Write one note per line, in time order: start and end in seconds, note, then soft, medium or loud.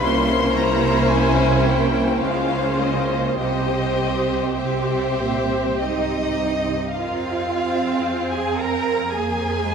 0.02 2.19 C2 medium
0.02 2.18 C3 medium
0.02 2.18 A#3 medium
0.02 2.18 C#4 medium
0.02 2.21 E4 medium
0.02 2.21 C5 medium
0.02 0.55 C6 loud
0.56 1.11 A#5 loud
1.11 1.66 G#5 medium
1.65 2.22 G5 medium
2.22 3.38 C#2 medium
2.22 3.38 C#3 medium
2.22 2.80 G#3 medium
2.22 3.37 C#4 medium
2.22 3.40 F4 medium
2.22 3.38 C5 medium
2.22 2.80 F5 medium
2.79 3.40 A#3 medium
2.79 3.36 D#5 medium
3.37 6.74 C2 medium
3.37 4.47 C3 medium
3.37 4.58 C4 medium
3.37 4.58 G4 medium
3.37 4.57 C5 medium
3.37 4.57 D#5 medium
4.58 5.17 C3 medium
4.58 6.73 C4 medium
4.58 5.77 G4 medium
4.58 6.73 G4 medium
4.58 5.77 C5 medium
4.58 6.40 E5 medium
5.20 5.81 A#2 medium
5.80 6.40 G#2 medium
5.80 6.95 D#4 medium
5.80 6.94 D#5 medium
6.42 6.99 G2 medium
6.97 9.75 F2 medium
6.97 9.09 C4 medium
6.97 8.33 F4 medium
6.97 7.48 A#4 medium
6.97 8.32 F5 medium
7.53 9.13 G#4 medium
8.32 8.59 G#4 medium
8.32 8.59 G#5 medium
8.59 9.13 A#4 medium
8.59 9.13 A#5 medium
9.13 9.65 A#3 medium
9.13 9.75 G#4 medium
9.13 9.75 C5 medium
9.13 9.75 G#5 medium
9.65 9.75 G#3 medium